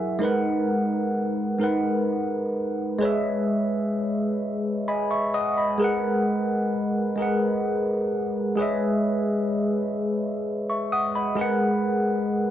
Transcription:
0.00 0.23 F#3 medium
0.00 0.23 E4 medium
0.00 0.23 G#4 medium
0.00 0.22 A#4 medium
0.00 0.23 E5 medium
0.00 0.23 F#5 medium
0.00 0.23 G#5 medium
0.19 1.10 G#3 medium
0.19 1.11 D#4 medium
0.19 1.12 A#4 medium
0.23 1.12 B4 medium
0.23 1.13 F#5 loud
1.58 2.50 G#3 medium
1.58 2.50 D#4 medium
1.58 2.51 A#4 medium
1.63 2.52 B4 medium
1.63 2.53 F#5 medium
2.99 3.90 G#3 medium
2.99 3.91 G#4 medium
2.99 3.91 B4 medium
2.99 3.92 C#5 medium
3.03 3.92 D#5 medium
3.03 3.93 E5 loud
4.88 5.10 D#5 medium
4.88 5.09 G#5 medium
4.88 5.09 B5 medium
5.11 5.33 E5 medium
5.11 5.32 C#6 medium
5.34 5.57 D#5 medium
5.34 5.56 F#5 medium
5.34 5.56 D#6 medium
5.57 6.01 D#5 medium
5.57 6.01 B5 medium
5.78 6.69 G#3 medium
5.78 6.70 G#4 medium
5.78 6.70 A#4 medium
5.82 6.71 B4 medium
5.82 6.72 F#5 loud
7.16 8.08 G#3 medium
7.16 8.09 G#4 medium
7.16 8.09 A#4 medium
7.21 8.10 B4 medium
7.21 8.11 F#5 medium
8.56 9.47 G#3 medium
8.56 9.48 G#4 medium
8.56 9.49 B4 medium
8.56 9.49 C#5 medium
8.61 9.50 D#5 medium
8.61 9.51 E5 loud
10.70 10.91 E5 soft
10.70 10.91 C#6 medium
10.92 11.14 F#5 medium
10.92 11.14 D#6 medium
11.15 11.59 D#5 medium
11.15 11.59 B5 medium
11.35 12.27 G#3 medium
11.35 12.27 G#4 medium
11.35 12.28 A#4 medium
11.39 12.29 B4 medium
11.39 12.30 F#5 loud

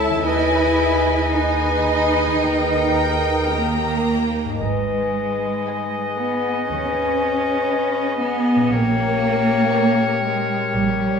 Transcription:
0.00 0.23 C#2 soft
0.00 0.22 C#3 soft
0.00 0.24 E4 medium
0.00 0.25 E4 soft
0.00 0.27 A4 soft
0.00 0.30 A4 soft
0.00 0.23 C#5 soft
0.00 0.29 C#5 soft
0.00 0.27 E5 soft
0.00 0.28 E5 soft
0.00 0.23 A5 soft
0.00 0.24 A5 soft
0.10 2.25 D#3 soft
0.14 2.30 D#4 soft
0.18 2.45 G#4 soft
0.23 2.40 D#2 soft
0.23 1.33 E4 medium
0.23 3.49 G#4 soft
0.23 2.47 B4 soft
0.23 3.53 B4 soft
0.23 1.33 B4 soft
0.23 4.28 D#5 soft
0.23 2.45 G#5 soft
0.23 1.33 G#5 soft
0.28 2.45 B4 soft
0.28 1.34 D#5 soft
1.35 3.53 D#4 medium
1.35 2.42 B4 soft
1.35 2.95 D#5 soft
1.35 2.42 G#5 soft
2.27 4.57 D#3 soft
2.31 4.48 D#4 soft
2.36 4.62 G4 soft
2.40 4.64 A#4 soft
2.40 4.40 G5 soft
2.40 4.28 G5 soft
2.45 4.37 D#2 soft
2.45 4.41 A#4 soft
2.45 4.25 A#4 soft
2.97 3.51 G5 soft
3.52 4.62 A#3 medium
3.52 4.29 G4 soft
3.52 4.29 A#4 soft
3.52 4.61 A#5 soft
4.44 8.34 G#2 soft
4.49 8.39 D#4 soft
4.54 8.44 G#4 soft
4.58 5.48 G#1 soft
4.58 8.68 G#4 soft
4.58 8.48 B4 soft
4.58 8.68 B4 soft
4.58 8.68 D#5 soft
4.62 6.19 G#3 soft
4.62 8.75 B4 soft
4.62 8.69 G#5 soft
5.66 6.45 B4 soft
5.66 6.45 D#5 soft
5.66 6.45 G#5 soft
6.18 6.70 B3 medium
6.70 7.53 D#2 soft
6.70 8.18 C#4 medium
7.71 8.48 B4 soft
7.71 8.48 D#5 soft
7.71 8.48 G#5 soft
8.22 8.73 B3 medium
8.55 11.20 A#2 soft
8.60 11.20 C#4 soft
8.64 11.20 G4 soft
8.69 9.55 A#1 medium
8.69 10.25 A#3 medium
8.69 11.20 A#4 soft
8.69 11.20 C#5 medium
8.73 11.20 G4 soft
8.73 11.20 A#4 soft
8.73 11.20 C#5 soft
8.73 11.20 G5 medium
9.73 10.50 A#4 soft
9.73 10.51 C#5 medium
9.73 10.51 G5 medium
10.24 10.73 G#3 medium
10.74 11.20 A#1 medium
10.74 11.20 G3 medium

